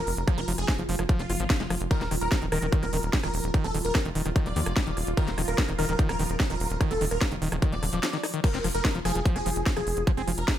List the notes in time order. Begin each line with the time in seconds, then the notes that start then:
Already playing: F3 F4 A#4
0.07 F1, open hi-hat
0.17 F1, closed hi-hat
0.28 F3, kick, cross-stick, closed hi-hat
0.38 F1 F4 A#4, closed hi-hat
0.48 F1 F3, open hi-hat
0.58 F1 G#4, cross-stick, closed hi-hat
0.68 G#3, kick, snare, closed hi-hat
0.79 F#1 F3, closed hi-hat
0.89 F1 F3, open hi-hat
0.99 F1 F3, cross-stick, closed hi-hat
1.09 F3, kick, closed hi-hat
1.19 F1 F4, closed hi-hat
1.30 F#1 F4, cross-stick, open hi-hat
1.40 G#1 F3, closed hi-hat
1.50 D#3, kick, snare, closed hi-hat
1.60 F1 G#3, snare, closed hi-hat
1.70 F1 F3, cross-stick, open hi-hat
1.81 F1, closed hi-hat
1.91 D#3 A#4, kick, closed hi-hat
2.01 D#1 D#4, snare, closed hi-hat
2.11 D#1 D#3, cross-stick, open hi-hat
2.21 D#1 A#4, closed hi-hat
2.32 G3, kick, snare, closed hi-hat
2.42 D#1 D#3, closed hi-hat
2.52 D#1 D#3 A#4, cross-stick, open hi-hat
2.62 D#1 D#3, closed hi-hat
2.72 D#3, kick, closed hi-hat
2.83 D#1 D#4 A#4, cross-stick, closed hi-hat
2.93 D#1 D#3, open hi-hat
3.03 D#1, closed hi-hat
3.13 G3, kick, snare, closed hi-hat
3.23 D#1 D#3 A#4, cross-stick, closed hi-hat
3.34 D#1, open hi-hat
3.44 D#1, closed hi-hat
3.54 D#3, kick, cross-stick, closed hi-hat
3.64 D#1 D#4 A4, closed hi-hat
3.74 D#1 D#3, open hi-hat
3.85 D#1 A#4, closed hi-hat
3.95 G3, kick, cross-stick, snare, closed hi-hat
4.05 F1 D#3, closed hi-hat
4.15 D#1 D#3, open hi-hat
4.26 D#1 D#3, cross-stick, closed hi-hat
4.36 D#3, kick, closed hi-hat
4.46 D#1 D#4 D5, closed hi-hat
4.56 D#2 D#3, open hi-hat
4.66 F1, cross-stick, closed hi-hat
4.77 G3, kick, snare, closed hi-hat
4.87 D#1 D#3, closed hi-hat
4.97 D#1, cross-stick, open hi-hat
5.07 D#1, closed hi-hat
5.17 D#3 A#4, kick, closed hi-hat
5.28 D#1 D#4, snare, closed hi-hat
5.38 D#1 D#3, cross-stick, open hi-hat
5.48 D#1 A#4, closed hi-hat
5.58 G3, kick, snare, closed hi-hat
5.68 D#1 D#3, cross-stick, closed hi-hat
5.79 D#1 D#3 A#4, open hi-hat
5.89 D#1 D#3, closed hi-hat
5.99 D#3, kick, closed hi-hat
6.09 D#1 D#4 A#4, cross-stick, closed hi-hat
6.19 D#1 D#3, open hi-hat
6.30 D#1, closed hi-hat
6.40 G3, kick, cross-stick, snare, closed hi-hat
6.50 D#1 D#3 A#4, closed hi-hat
6.60 D#1, open hi-hat
6.70 D#1, closed hi-hat
6.81 D#3, kick, cross-stick, closed hi-hat
6.91 D#1 D#4 A4, closed hi-hat
7.01 D#1 D#3, open hi-hat
7.11 D#1 A#4, cross-stick, closed hi-hat
7.21 G3, kick, snare, closed hi-hat
7.32 F1 D#3, closed hi-hat
7.42 D#1 D#3, open hi-hat
7.52 D#1 D#3, cross-stick, closed hi-hat
7.62 D#3, kick, closed hi-hat
7.72 D#1 D#4 D5, closed hi-hat
7.83 D#1 D3, cross-stick, open hi-hat
7.93 D#1 F3, closed hi-hat
8.03 F3, snare, closed hi-hat
8.13 D#3, snare, closed hi-hat
8.23 D#4, cross-stick, open hi-hat
8.34 D#3, closed hi-hat
8.44 F3 F4 A#4, kick, closed hi-hat, crash
8.54 F1 C4, snare, closed hi-hat
8.64 F1 F3, cross-stick, open hi-hat
8.75 F1 A#4, closed hi-hat
8.85 G#3, kick, snare, closed hi-hat
8.95 F1 F3, closed hi-hat
9.05 F1 F3 G#4, cross-stick, open hi-hat
9.15 F1 F3, closed hi-hat
9.25 F3, kick, closed hi-hat
9.36 F1 F4 G#4, cross-stick, closed hi-hat
9.46 F1 F3, open hi-hat
9.56 F1, closed hi-hat
9.66 G#3, kick, snare, closed hi-hat
9.77 F1 F3 G#4, cross-stick, closed hi-hat
9.87 F1, open hi-hat
9.97 F1, closed hi-hat
10.07 F3, kick, cross-stick, closed hi-hat
10.17 F1 C4 G#4, closed hi-hat
10.28 F1 F3, open hi-hat
10.38 F1 A#4, closed hi-hat
10.48 G#3, kick, cross-stick, snare, closed hi-hat